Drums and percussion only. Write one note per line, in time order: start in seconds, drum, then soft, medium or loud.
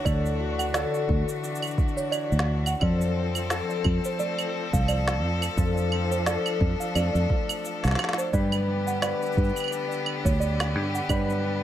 0.05 kick loud
0.05 cabasa medium
0.05 claves medium
0.26 cabasa soft
0.59 cabasa medium
0.59 claves medium
0.74 snare medium
0.74 cabasa medium
0.94 cabasa soft
1.09 kick loud
1.29 cabasa medium
1.44 cabasa medium
1.55 cabasa soft
1.62 cabasa soft
1.62 claves medium
1.67 cabasa soft
1.78 kick loud
1.78 cabasa soft
1.88 cabasa soft
1.98 cabasa medium
2.12 cabasa medium
2.12 claves medium
2.32 cabasa soft
2.39 snare medium
2.66 cabasa medium
2.66 claves medium
2.81 kick loud
2.81 claves medium
3.01 cabasa medium
3.35 cabasa medium
3.35 claves medium
3.50 snare medium
3.50 cabasa medium
3.70 cabasa soft
3.84 kick loud
3.84 claves medium
4.05 cabasa medium
4.20 cabasa medium
4.39 cabasa soft
4.39 claves medium
4.73 kick loud
4.73 cabasa medium
4.88 cabasa soft
4.88 claves medium
5.08 snare medium
5.08 cabasa soft
5.42 cabasa medium
5.42 claves medium
5.57 kick loud
5.57 cabasa medium
5.77 cabasa soft
5.92 claves medium
6.12 cabasa medium
6.26 snare medium
6.26 cabasa medium
6.46 cabasa soft
6.46 claves medium
6.61 kick loud
6.81 cabasa medium
6.95 cabasa medium
6.95 claves medium
7.15 cabasa soft
7.30 kick medium
7.49 cabasa medium
7.49 claves medium
7.65 cabasa medium
7.84 snare soft
7.84 cabasa soft
7.88 snare soft
7.91 snare soft
7.95 snare soft
7.99 snare soft
7.99 claves medium
8.04 snare medium
8.09 snare medium
8.13 snare medium
8.19 cabasa medium
8.33 kick loud
8.33 cabasa medium
8.52 cabasa soft
8.52 claves medium
8.88 cabasa medium
9.02 snare medium
9.02 cabasa medium
9.02 claves medium
9.22 cabasa soft
9.26 cabasa soft
9.32 cabasa soft
9.37 kick loud
9.37 cabasa soft
9.44 cabasa soft
9.49 cabasa soft
9.56 cabasa medium
9.56 claves soft
9.60 claves soft
9.64 claves medium
9.68 claves medium
9.72 cabasa medium
9.92 cabasa soft
10.06 claves medium
10.25 kick loud
10.25 cabasa medium
10.41 cabasa soft
10.60 snare medium
10.60 cabasa soft
10.60 claves medium
10.95 cabasa medium
11.09 kick loud
11.09 cabasa medium
11.09 claves medium
11.30 cabasa soft